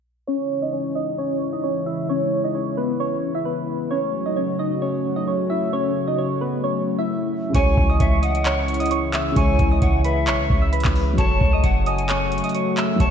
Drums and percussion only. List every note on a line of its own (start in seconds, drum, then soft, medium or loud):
7.55 kick loud
7.55 closed hi-hat medium
7.77 kick loud
8.00 kick loud
8.00 closed hi-hat medium
8.23 closed hi-hat medium
8.35 closed hi-hat medium
8.46 clap loud
8.46 closed hi-hat medium
8.68 closed hi-hat medium
8.74 closed hi-hat medium
8.80 closed hi-hat medium
8.86 closed hi-hat medium
8.91 closed hi-hat medium
9.14 clap loud
9.14 closed hi-hat medium
9.36 kick loud
9.36 closed hi-hat medium
9.59 kick loud
9.59 closed hi-hat medium
9.82 kick loud
9.82 closed hi-hat medium
10.05 closed hi-hat medium
10.27 clap loud
10.27 closed hi-hat medium
10.50 kick loud
10.73 closed hi-hat medium
10.80 closed hi-hat medium
10.85 kick medium
10.85 clap loud
10.85 closed hi-hat soft
10.96 open hi-hat medium
11.18 kick loud
11.18 closed hi-hat medium
11.41 kick loud
11.64 kick loud
11.64 closed hi-hat medium
11.86 closed hi-hat medium
11.98 closed hi-hat medium
12.09 clap loud
12.09 closed hi-hat medium
12.32 closed hi-hat medium
12.38 closed hi-hat medium
12.44 closed hi-hat medium
12.49 closed hi-hat medium
12.55 closed hi-hat medium
12.77 clap loud
12.77 closed hi-hat medium
13.00 kick loud
13.00 closed hi-hat medium